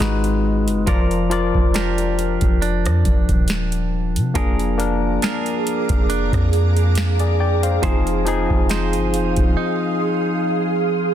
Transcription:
Already playing: C4 F4 G#4 A#4
0.00 G#1 G#3 D#4 F#4 B4, snare, closed hi-hat
0.24 closed hi-hat
0.67 F#1, closed hi-hat
0.86 F1 F3 F4 A#4 D5, kick, closed hi-hat
1.11 closed hi-hat
1.30 F3 F4 A#4 D5, closed hi-hat
1.55 F1, kick
1.74 D4 G4 A#4 D5, snare, closed hi-hat
1.98 closed hi-hat
2.19 closed hi-hat
2.41 F1, kick, closed hi-hat
2.62 D4, closed hi-hat
2.85 F2, cross-stick, closed hi-hat
3.05 F1, kick, closed hi-hat
3.29 D#1, kick, closed hi-hat
3.48 snare, closed hi-hat
3.72 closed hi-hat
4.16 C3, closed hi-hat
4.34 F1 F3 A#3 D4 G#4 A#4 F5 A#5 D6, kick, closed hi-hat
4.59 closed hi-hat
4.78 A#3 D4 A#4, closed hi-hat
5.22 D4 G#4 A#4, snare, closed hi-hat
5.46 closed hi-hat
5.67 closed hi-hat
5.89 F1, kick, closed hi-hat
6.10 D4, closed hi-hat
6.32 F2, kick, cross-stick, closed hi-hat
6.53 closed hi-hat
6.77 closed hi-hat
6.95 snare, closed hi-hat
7.19 G#4 D5, closed hi-hat
7.40 D5 G5
7.63 C5 F5, closed hi-hat
7.82 F1 F3 C4 D#4 G#4 C5 F5 C6 D#6, kick, closed hi-hat
8.07 closed hi-hat
8.25 F3 C4 D#4 G#4 C5, closed hi-hat
8.50 F1, kick
8.69 D#4 G#4 C5, snare, closed hi-hat
8.93 G1, closed hi-hat
9.14 F1, closed hi-hat
9.36 D#1, kick, closed hi-hat
9.57 D#4

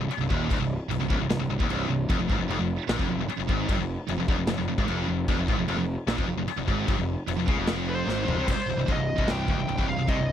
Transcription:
0.01 C1 C2
0.10 muted picked electric bass stroke, muted distorted electric guitar stroke, crash
0.19 C1 C2
0.30 D#1 D#2, kick
0.50 D1 D2, kick, crash
0.60 C1 C2
0.88 C1 C2, crash
0.99 C1 C2
1.10 C1 C2, kick
1.18 C1 C2
1.29 C1 C2, snare, crash
1.39 C1 C2
1.48 C1 C2
1.60 D#1 D#2, kick
1.68 C1 C2, crash
1.88 C1 C2
2.09 F1 F2, kick, crash
2.19 F1 F2
2.30 G#1 G#2, kick
2.39 F1 F2
2.48 F1 F2, crash
2.59 F1 F2
2.89 A#1 A#2, snare, crash
2.99 F1 F2, kick
3.10 F1 F2
3.19 F1 F2
3.29 muted picked electric bass stroke, muted distorted electric guitar stroke, crash
3.39 F1 F2
3.49 G#1 G#2, kick
3.69 G1 G2, kick, crash
3.79 F1 F2
4.08 F1 F2, crash
4.19 F1 F2
4.28 F1 F2, kick
4.39 F1 F2
4.47 F1 F2, snare, crash
4.58 F1 F2
4.68 F1 F2
4.78 G#1 G#2, kick
4.88 F1 F2, crash
5.08 F1 F2
5.28 F1 F2, kick, crash
5.37 F1 F2
5.48 G#1 G#2, kick
5.58 F1 F2
5.67 F1 F2, crash
5.77 F1 F2
6.07 A#1 A#2, snare, crash
6.17 F1 F2, kick
6.26 F1 F2
6.37 F1 F2
6.48 muted picked electric bass stroke, muted distorted electric guitar stroke, crash
6.57 F1 F2
6.68 G#1 G#2, kick
6.88 G1 G2, kick, crash
6.98 F1 F2
7.28 F1 F2, crash
7.38 F1 F2
7.48 C#2 C#3, kick
7.57 F1 F2
7.67 snare, crash
7.89 C5
8.06 G#1 G#2, snare
8.25 F1 F2, floor tom
8.30 F2
8.37 C2 C3
8.48 C1 C2 C5, kick, crash, china
8.56 muted distorted electric guitar stroke, muted picked electric bass stroke
8.60 muted distorted electric guitar stroke
8.66 C1 C2
8.76 C1 C2
8.88 D#1 D#2 D#5, kick, china
8.96 C1 C2
9.18 C1 C2, kick
9.28 G5, snare, china
9.48 D1 D2 G5, kick
9.58 C1 C2
9.68 C1 C2, china
9.78 C1 C2, kick
9.88 C1 C2 F5
9.99 C1 C2
10.08 C2 C3 D#5, kick, china
10.18 C1 C2

